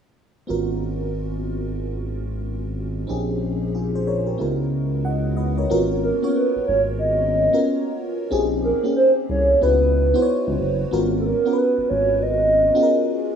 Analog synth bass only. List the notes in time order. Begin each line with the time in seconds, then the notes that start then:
0.50 G#1
3.10 A#1
4.40 C#2
5.71 G#1
6.56 G#1
6.68 G#1
8.32 A#1
9.29 C2
9.62 C#2
10.47 C#2
10.59 F#1
10.92 G#1
11.78 G#1
11.90 G#1